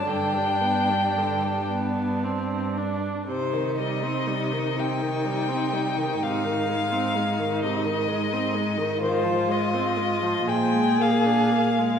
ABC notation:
X:1
M:6/8
L:1/16
Q:3/8=41
K:Ablyd
V:1 name="Violin"
g6 z6 | c2 e4 g6 | f6 e6 | [K:Bbmix] c2 e4 g2 f4 |]
V:2 name="Violin"
D12 | E12- | E12 | [K:Bbmix] F6 A6 |]
V:3 name="Viola" clef=bass
D, G, =B, G, D, G, B,2 C2 D2 | C, E, G, C G, E, C, E, G, C G, E, | C, E, A, C A, E, C, E, A, C A, E, | [K:Bbmix] E, F, A, C A, F, F, A, B, D B, A, |]
V:4 name="Cello" clef=bass
G,,12 | C,12 | A,,12- | [K:Bbmix] A,,6 B,,6 |]